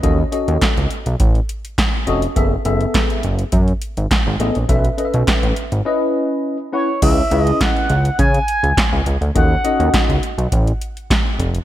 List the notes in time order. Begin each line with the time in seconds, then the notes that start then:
0.03 D#2 C#4 F#4 A4 D#5, kick, closed hi-hat
0.32 C#4 F#4 A4 D#5, closed hi-hat
0.48 D#2, closed hi-hat
0.61 kick, snare, clap, closed hi-hat
0.77 C#2, closed hi-hat
0.91 closed hi-hat
1.06 B1, closed hi-hat
1.20 A1, kick, closed hi-hat
1.35 closed hi-hat
1.49 closed hi-hat
1.65 closed hi-hat
1.78 kick, snare, clap, closed hi-hat
2.07 F1 C#4 F#4 A4 D#5, closed hi-hat
2.22 closed hi-hat
2.36 F#1 B3 G#4 A4 E5, kick, closed hi-hat
2.65 F#1 B3 G#4 A4 E5, closed hi-hat
2.81 closed hi-hat
2.94 kick, snare, clap, closed hi-hat
3.10 closed hi-hat
3.23 F#1, closed hi-hat
3.39 closed hi-hat
3.52 F#2, kick, closed hi-hat
3.68 closed hi-hat
3.82 closed hi-hat
3.97 G#1, closed hi-hat
4.11 kick, snare, clap, closed hi-hat
4.27 G#1
4.40 A1 B3 G#4 A4 D#5, closed hi-hat
4.55 A#1, closed hi-hat
4.68 B1 C#4 A4 B4 E5, kick, closed hi-hat
4.85 closed hi-hat
4.97 C#4 A4 B4 D#5, closed hi-hat
5.05 E5
5.14 B1, closed hi-hat
5.27 kick, snare, clap, closed hi-hat
5.43 A1, closed hi-hat
5.56 closed hi-hat
5.72 G#1, closed hi-hat
5.85 C#4 E4 B4 D#5
6.73 C#4 E4 B4 C#5 F#5
7.02 C#2 C#4 E4 G#4 B4 D#5 E5, kick, closed hi-hat, crash
7.31 C#2 C#4 E4 G#4 B4 C#5, closed hi-hat
7.38 D#5
7.47 closed hi-hat
7.61 F#5, kick, snare, clap, closed hi-hat
7.77 closed hi-hat
7.90 C#2, closed hi-hat
8.05 closed hi-hat
8.19 C#3 G#5, kick, closed hi-hat
8.34 closed hi-hat
8.48 closed hi-hat
8.63 C#2, closed hi-hat
8.77 kick, snare, clap, closed hi-hat
8.92 C#2
9.06 C#2, closed hi-hat
9.21 D2, closed hi-hat
9.35 D#2 C#4 D#4 F#4 A4 D#5 F#5, kick, closed hi-hat
9.64 C#4 D#4 F#4 A4 D#5, closed hi-hat
9.80 D#2, closed hi-hat
9.94 kick, snare, clap, closed hi-hat
10.09 C#2, closed hi-hat
10.23 closed hi-hat
10.38 B1, closed hi-hat
10.52 A1, kick, closed hi-hat
10.67 closed hi-hat
10.81 closed hi-hat
10.97 closed hi-hat
11.10 kick, snare, clap, closed hi-hat
11.39 F1, closed hi-hat
11.55 closed hi-hat